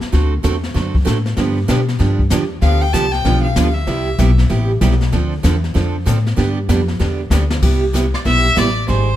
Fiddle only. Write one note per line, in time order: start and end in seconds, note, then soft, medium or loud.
2.62 2.82 F5 loud
2.81 2.95 G5 loud
2.93 3.14 A5 medium
3.12 3.42 G5 loud
3.42 3.75 F5 medium
3.74 4.37 E5 medium
8.14 8.19 D5 medium
8.25 8.59 E5 loud
8.57 8.87 D5 loud
8.88 9.16 C5 medium